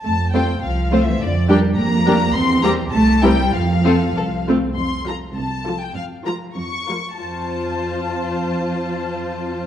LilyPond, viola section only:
\new Staff \with { instrumentName = "Viola section" } { \time 2/4 \key f \major \tempo 4 = 99 r8 <a c'>16 r8. <a c'>16 r16 | r8 <g d'>16 r8. <g d'>16 r16 | r8 <g c'>16 r8. <g c'>16 r16 | r8 <a c'>16 r8. <a c'>16 r16 |
r8 <f f'>8 r8 <f f'>8 | r8 <f f'>8 r8 <f f'>8 | <f f'>2~ | <f f'>2 | }